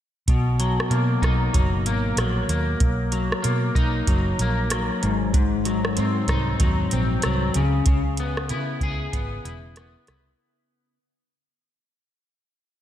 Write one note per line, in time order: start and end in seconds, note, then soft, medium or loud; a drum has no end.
0.28 0.79 B1 medium
0.28 2.81 B2 medium
0.28 kick loud
0.28 closed hi-hat medium
0.60 1.53 F#3 medium
0.60 closed hi-hat medium
0.80 cross-stick medium
0.90 1.16 B2 medium
0.90 1.85 A#3 soft
0.90 closed hi-hat medium
1.22 1.48 B1 medium
1.22 3.75 D#4 medium
1.22 kick medium
1.22 cross-stick medium
1.22 closed hi-hat soft
1.53 1.86 F#1 medium
1.53 2.19 F#3 medium
1.53 kick medium
1.53 closed hi-hat medium
1.86 2.12 G#1 medium
1.86 2.48 A#3 medium
1.86 closed hi-hat soft
2.17 2.42 A#1 medium
2.17 3.12 F#3 medium
2.17 cross-stick medium
2.17 closed hi-hat medium
2.48 2.74 D#2 medium
2.48 3.41 A#3 soft
2.48 closed hi-hat soft
2.80 3.31 B1 medium
2.80 kick loud
2.80 closed hi-hat medium
3.12 4.08 F#3 medium
3.12 closed hi-hat soft
3.32 cross-stick medium
3.42 3.70 B2 medium
3.42 4.38 A#3 soft
3.42 closed hi-hat medium
3.75 4.01 B1 medium
3.75 6.28 D#4 medium
3.75 kick medium
3.75 closed hi-hat soft
4.07 4.33 F#1 medium
4.07 4.70 F#3 medium
4.07 kick medium
4.07 closed hi-hat medium
4.39 4.89 A#1 medium
4.39 5.11 A#3 medium
4.39 closed hi-hat soft
4.70 5.37 F#3 medium
4.70 cross-stick medium
4.70 closed hi-hat medium
5.02 5.99 G#1 medium
5.02 5.32 G#2 medium
5.02 closed hi-hat soft
5.34 7.62 G#2 medium
5.34 kick loud
5.34 closed hi-hat medium
5.65 6.59 F#3 soft
5.65 closed hi-hat soft
5.85 cross-stick medium
5.97 6.23 G#2 medium
5.97 6.92 C4 medium
5.97 closed hi-hat medium
6.28 6.53 C2 medium
6.28 7.62 D#4 medium
6.28 kick medium
6.28 cross-stick medium
6.28 closed hi-hat soft
6.60 6.85 D#2 medium
6.60 7.23 F#3 medium
6.60 kick medium
6.60 closed hi-hat medium
6.91 7.17 A#1 medium
6.91 7.63 C4 medium
6.91 closed hi-hat soft
7.22 7.49 C2 medium
7.22 7.63 F#3 medium
7.22 cross-stick medium
7.22 closed hi-hat medium
7.54 7.80 C#2 medium
7.54 7.87 C#3 medium
7.54 closed hi-hat soft
7.86 8.52 C#2 medium
7.86 10.97 C#3 medium
7.86 kick loud
7.86 closed hi-hat medium
8.17 9.13 B3 medium
8.17 closed hi-hat medium
8.37 cross-stick medium
8.49 8.75 C#3 medium
8.49 9.44 E4 medium
8.49 closed hi-hat medium
8.81 9.06 C#2 medium
8.81 10.97 G#4 medium
8.81 kick medium
8.81 closed hi-hat soft
9.13 9.38 G#1 medium
9.13 9.77 B3 medium
9.13 kick medium
9.13 closed hi-hat medium
9.45 9.95 E1 medium
9.45 10.09 E4 medium
9.45 closed hi-hat soft
9.76 10.97 B3 medium
9.76 cross-stick medium
9.76 closed hi-hat medium
10.07 10.33 C2 medium
10.07 10.97 E4 soft
10.07 cross-stick medium
10.07 closed hi-hat soft